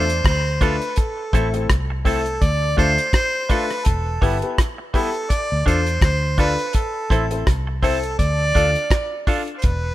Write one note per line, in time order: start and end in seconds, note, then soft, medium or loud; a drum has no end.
0.00 0.22 E2 medium
0.00 0.26 C5 loud
0.09 closed hi-hat medium
0.24 0.78 D2 medium
0.24 0.64 C5 medium
0.24 kick loud
0.24 cross-stick loud
0.24 closed hi-hat medium
0.61 0.77 A3 medium
0.61 0.75 D4 medium
0.61 0.77 D4 medium
0.61 0.78 F4 medium
0.61 0.76 F4 loud
0.61 0.78 A4 medium
0.61 0.76 A4 loud
0.61 1.00 B4 medium
0.61 kick loud
0.61 closed hi-hat medium
0.82 closed hi-hat soft
0.96 1.70 A4 medium
0.96 kick loud
0.96 closed hi-hat medium
1.33 1.66 A1 medium
1.33 1.50 A3 medium
1.33 1.48 C4 medium
1.33 1.50 C4 medium
1.33 1.50 E4 medium
1.33 1.48 E4 medium
1.33 1.50 A4 loud
1.33 1.48 A4 loud
1.33 kick loud
1.33 closed hi-hat medium
1.54 1.66 A3 medium
1.54 1.66 C4 medium
1.54 1.66 E4 medium
1.54 1.67 A4 medium
1.54 closed hi-hat medium
1.70 2.38 C2 medium
1.70 kick loud
1.70 cross-stick loud
1.70 closed hi-hat medium
1.90 muted clean electric guitar stroke medium
2.05 2.22 A3 medium
2.05 2.22 C4 medium
2.05 2.20 C4 medium
2.05 2.22 E4 medium
2.05 2.20 E4 medium
2.05 2.22 A4 medium
2.05 2.20 A4 medium
2.05 2.45 A4 medium
2.05 kick medium
2.05 open hi-hat medium
2.26 closed hi-hat soft
2.42 2.74 D2 medium
2.42 2.78 D5 loud
2.42 kick loud
2.42 closed hi-hat medium
2.77 2.97 D2 loud
2.77 2.94 A3 medium
2.77 2.92 D4 medium
2.77 2.94 D4 medium
2.77 2.94 F4 medium
2.77 2.92 F4 medium
2.77 2.94 A4 loud
2.77 2.92 A4 medium
2.77 3.11 C5 loud
2.77 kick medium
2.77 closed hi-hat medium
2.98 closed hi-hat medium
3.13 3.52 C5 loud
3.13 kick loud
3.13 cross-stick loud
3.13 closed hi-hat medium
3.49 3.66 A3 medium
3.49 3.64 D4 medium
3.49 3.66 D4 medium
3.49 3.66 F4 medium
3.49 3.64 F4 loud
3.49 3.67 A4 loud
3.49 3.65 A4 loud
3.49 3.88 B4 medium
3.49 kick loud
3.49 closed hi-hat medium
3.70 cross-stick medium
3.70 closed hi-hat soft
3.85 4.19 E1 loud
3.85 4.58 A4 medium
3.85 kick loud
3.85 closed hi-hat medium
4.21 4.41 G1 medium
4.21 4.36 G3 medium
4.21 4.38 B3 medium
4.21 4.36 B3 medium
4.21 4.38 E4 medium
4.21 4.37 E4 loud
4.21 4.38 G4 medium
4.21 4.39 B4 medium
4.21 kick loud
4.21 open hi-hat medium
4.42 4.55 B3 medium
4.42 4.55 E4 medium
4.42 4.55 G4 medium
4.42 4.55 B4 medium
4.42 closed hi-hat medium
4.58 kick loud
4.58 cross-stick loud
4.58 closed hi-hat loud
4.78 muted clean electric guitar stroke soft
4.94 5.08 G3 medium
4.94 5.10 B3 medium
4.94 5.09 B3 loud
4.94 5.11 E4 medium
4.94 5.09 E4 loud
4.94 5.11 G4 medium
4.94 5.33 A4 loud
4.94 5.11 B4 loud
4.94 kick medium
4.94 open hi-hat medium
5.14 closed hi-hat medium
5.30 5.66 D5 loud
5.30 kick medium
5.30 closed hi-hat medium
5.52 5.65 D2 medium
5.65 5.99 E2 medium
5.65 5.82 D4 medium
5.65 5.80 D4 medium
5.65 5.83 F4 medium
5.65 5.81 F4 medium
5.65 5.83 A4 medium
5.65 5.81 A4 medium
5.65 6.00 C5 loud
5.65 5.83 D5 medium
5.65 kick medium
5.65 closed hi-hat medium
5.87 closed hi-hat medium
6.01 6.55 D2 loud
6.01 6.36 C5 medium
6.01 kick loud
6.01 cross-stick loud
6.01 closed hi-hat medium
6.38 6.52 D4 medium
6.38 6.55 D4 medium
6.38 6.55 F4 medium
6.38 6.53 F4 medium
6.38 6.55 A4 medium
6.38 6.53 A4 loud
6.38 6.76 B4 loud
6.38 6.55 D5 medium
6.38 kick loud
6.38 closed hi-hat medium
6.59 closed hi-hat soft
6.73 7.47 A4 medium
6.73 kick loud
6.73 closed hi-hat medium
7.10 7.43 A1 medium
7.10 7.27 C4 medium
7.10 7.25 C4 medium
7.10 7.27 E4 medium
7.10 7.25 E4 medium
7.10 7.27 A4 medium
7.10 7.26 A4 medium
7.10 7.28 C5 medium
7.10 kick loud
7.10 closed hi-hat medium
7.31 7.43 C4 medium
7.31 7.44 E4 medium
7.31 7.44 A4 medium
7.31 7.44 C5 medium
7.31 closed hi-hat medium
7.47 8.15 C2 loud
7.47 kick loud
7.47 cross-stick loud
7.47 closed hi-hat medium
7.67 muted clean electric guitar stroke soft
7.83 7.97 C4 medium
7.83 7.99 C4 medium
7.83 7.99 E4 medium
7.83 7.98 E4 medium
7.83 8.00 A4 medium
7.83 8.17 A4 medium
7.83 7.98 A4 loud
7.83 8.00 C5 loud
7.83 kick medium
7.83 open hi-hat medium
8.03 closed hi-hat medium
8.19 8.52 D2 loud
8.19 9.23 D5 loud
8.19 kick medium
8.19 closed hi-hat medium
8.55 8.74 D2 loud
8.55 8.71 D4 medium
8.55 8.69 D4 medium
8.55 8.72 F4 medium
8.55 8.70 F4 medium
8.55 8.72 A4 medium
8.55 8.70 A4 medium
8.55 8.72 D5 medium
8.55 kick medium
8.55 closed hi-hat medium
8.75 closed hi-hat medium
8.91 kick loud
8.91 cross-stick loud
8.91 closed hi-hat medium
9.27 9.42 D4 medium
9.27 9.44 D4 medium
9.27 9.44 F4 medium
9.27 9.42 F4 loud
9.27 9.44 A4 medium
9.27 9.42 A4 loud
9.27 9.44 D5 medium
9.27 kick medium
9.27 open hi-hat medium
9.48 closed hi-hat soft
9.58 9.67 C5 medium
9.62 9.95 E1 loud
9.62 9.95 B4 medium
9.62 kick loud
9.62 closed hi-hat medium